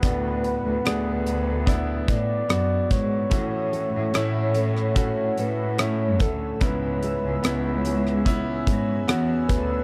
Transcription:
<<
  \new Staff \with { instrumentName = "Analog synth pad" } { \time 4/4 \key a \major \tempo 4 = 73 << { r1 | e'''1~ | e'''1 | } \\ { <b' fis''>1 | <cis'' fis''>1 | <cis'' gis'' b''>1 | } >> }
  \new Staff \with { instrumentName = "Flugelhorn" } { \time 4/4 \key a \major b'4. r4 d''4 cis''8~ | cis''2 cis''8 b'8 cis''8 a'8 | b'2 r4. b'8 | }
  \new Staff \with { instrumentName = "Nylon-string guitar" } { \time 4/4 \key a \major r1 | a,8 <a cis' a'>4 <a cis' a'>8 cis'8 <a cis' a'>4 a'8 | cis8 <b e' gis'>4 <b e' gis'>8 e'8 <b e' gis'>4 gis'8 | }
  \new Staff \with { instrumentName = "Grand piano" } { \time 4/4 \key a \major <b d' fis'>4 <b d' gis'>4 <b d' e'>4 <b d' fis'>4 | <a cis' fis'>4 <a cis' e'>4 <a cis' fis'>4 <a cis' e'>4 | <b cis' e'>4 <b cis' e'>4 <b cis' e'>4 <b cis' fis'>4 | }
  \new Staff \with { instrumentName = "Grand piano" } { \clef bass \time 4/4 \key a \major a,4. r2 r8 | <a, e>4. r2 r8 | gis,4. r2 r8 | }
  \new Staff \with { instrumentName = "Cello section" } { \clef bass \time 4/4 \key a \major d,8. d,16 d,4. a,8 fis,8 gis,8 | a,8. a,16 a,4. a,4 d,8 | cis,8. cis,16 cis,4. gis,8 e,8 d,8 | }
  \new DrumStaff \with { instrumentName = "Drums" } \drummode { \time 4/4 <hh bd>8 hh8 <hh ss>8 hh8 <hh bd>8 <hh bd>8 <hh ss>8 <hh bd>8 | <hh bd>8 hh8 <hh ss>8 hh16 ss16 <hh bd>8 hh8 <hh ss>8 <hh bd>8 | <hh bd>8 hh8 <hh ss>8 hh16 ss16 <hh bd>8 <hh bd>8 <hh ss>8 <hh bd>8 | }
>>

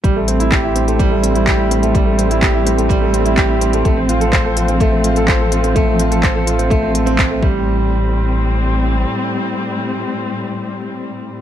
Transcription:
<<
  \new Staff \with { instrumentName = "Grand piano" } { \time 4/4 \key a \minor \tempo 4 = 126 g16 a16 c'16 e'16 g'16 e'16 c'16 a16 g16 a16 c'16 e'16 g'16 e'16 c'16 a16 | g16 a16 c'16 e'16 g'16 e'16 c'16 a16 g16 a16 c'16 e'16 g'16 e'16 c'16 a16 | a16 c'16 f'16 a'16 c''16 a'16 f'16 c'16 a16 c'16 f'16 a'16 c''16 a'16 f'16 c'16 | a16 c'16 f'16 a'16 c''16 a'16 f'16 c'16 a16 c'16 a16 c'16 c'16 a16 g8~ |
g8 r2. r8 | r1 | }
  \new Staff \with { instrumentName = "String section" } { \clef bass \time 4/4 \key a \minor << { c'1~ | c'1~ | c'1~ | c'2.~ c'8 <a, g c'>8~ |
<a, g c'>1~ | <a, g c'>1 | } \\ { <g a>1~ | <g a>1 | <f a>1~ | <f a>2.~ <f a>8 r8 |
r1 | r1 | } >> }
  \new Staff \with { instrumentName = "Sub bass" } { \clef bass \time 4/4 \key a \minor a,,1~ | a,,1 | a,,1~ | a,,2.~ a,,8 a,,8~ |
a,,2. r4 | r1 | }
  \new DrumStaff \with { instrumentName = "Drums" } \drummode { \time 4/4 <hh bd>8 hh16 hh16 <hc hh bd>8 hh16 hh16 <hh bd>8 hh16 hh16 <hc hh bd>8 hh16 hh16 | <hh bd>8 hh16 hh16 <hc hh bd>8 hh16 hh16 <hh bd>8 hh16 hh16 <hc hh bd>8 hh16 hh16 | <hh bd>8 hh16 hh16 <hc hh bd>8 hh16 hh16 <hh bd>8 hh16 hh16 <hc hh bd>8 hh16 hh16 | <hh bd>8 hh16 hh16 <hc hh bd>8 hh16 hh16 <hh bd>8 hh16 hh16 <hc hh bd>8 bd8 |
r4 r4 r4 r4 | r4 r4 r4 r4 | }
>>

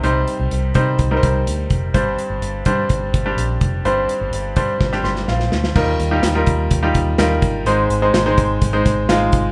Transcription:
<<
  \new Staff \with { instrumentName = "Grand piano" } { \time 4/4 \key g \phrygian \tempo 4 = 126 <g c' ees' c''>4~ <g c' ees' c''>16 r16 <g c' ees' c''>8. <g c' ees' bes' c''>4. r16 | <g c' d' c''>4~ <g c' d' c''>16 r16 <g c' d' c''>4~ <g c' d' c''>16 <g c' d' g'>4~ <g c' d' g'>16 | <g c' d' c''>4~ <g c' d' c''>16 r16 <g c' d' c''>8. <g c' d' g'>4. r16 | <g ees' f' bes'>8. <g ees' f' g'>8 <g ees' f' bes'>4 <g ees' f' g'>8. <g ees' f' bes'>4 |
<aes c' ees' c''>8. <aes c' ees' c''>8 <aes c' ees' c''>4 <aes c' ees' c''>8. <aes c' ees' f'>4 | }
  \new Staff \with { instrumentName = "Grand piano" } { \clef bass \time 4/4 \key g \phrygian c4 r2. | g,4. r2 r8 | g,4. r4 c'''8 f''4 | ees4. r2 r8 |
aes,4. r2 r8 | }
  \new Staff \with { instrumentName = "Fingered electric bass" } { \clef bass \time 4/4 \key g \phrygian c,8 r16 c,16 c,8 c8 c,8 c,8 d,8 f,,8 | g,,8 r16 g,,16 g,,8 g,8 g,,8 g,,8 bes,,8 f,,8 | g,,8 r16 g,,16 g,,8 g,8 g,,8 g,,8 bes,,8 d,8 | ees,8 ees,8 ees,8 ees,8 ees,8 ees,8 ees,8 g,,8 |
aes,,8 aes,,8 aes,,8 aes,,8 aes,,8 aes,,8 aes,,8 aes,,8 | }
  \new DrumStaff \with { instrumentName = "Drums" } \drummode { \time 4/4 hh8 hh8 hh8 <hh bd>8 <hh bd>8 <hh bd>8 hh8 <hh bd>8 | <hh bd>8 hh8 hh8 <hh bd>8 <hh bd>8 <hh bd>8 hh8 <hh bd>8 | hh8 hh8 hh8 <hh bd>8 <bd sn>16 sn16 sn16 sn16 sn16 sn16 sn16 sn16 | <cymc bd>8 hh8 <hh sn>8 <hh bd>8 <hh bd>8 <hh bd>8 <hh sn>8 <hh bd>8 |
hh8 hh8 <hh sn>8 <hh bd>8 <hh bd>8 <hh bd sn>8 <hh sn>8 <hh bd>8 | }
>>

